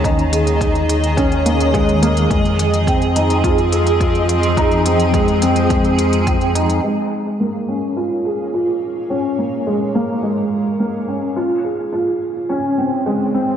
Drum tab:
HH |xxxxxxxxxxxxxxxx|xxxxxxxxxxxxxxxx|xxxxxxxxxxxxxxxx|----------------|
BD |o---o---o---o---|o---o---o---o---|o---o---o---o---|----------------|

HH |----------------|----------------|
BD |----------------|----------------|